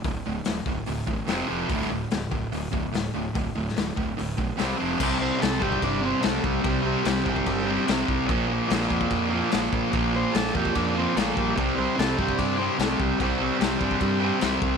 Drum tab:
CC |----------------|----------------|----------------|x---x---x---x---|
HH |o---o---o---o---|o---o---o---o---|o---o---o---o---|----------------|
SD |----o-------o---|-o--o-------o---|---oo-------o---|----oo------o---|
BD |o-----o---o-----|o-----o---o-----|o-----o---o-----|o-----ooo-----o-|

CC |x---x---x---x---|x---x---x---x---|x---x---x---x---|x---x---x---x---|
HH |----------------|----------------|----------------|----------------|
SD |----oo------o---|----oo------o---|----oo------o---|----oo------o---|
BD |o-----ooo-----o-|o-----ooo-----o-|o-----ooo-----o-|o-----ooo-----o-|

CC |x---x---x---x---|
HH |----------------|
SD |----o-------o---|
BD |o-----ooo-----o-|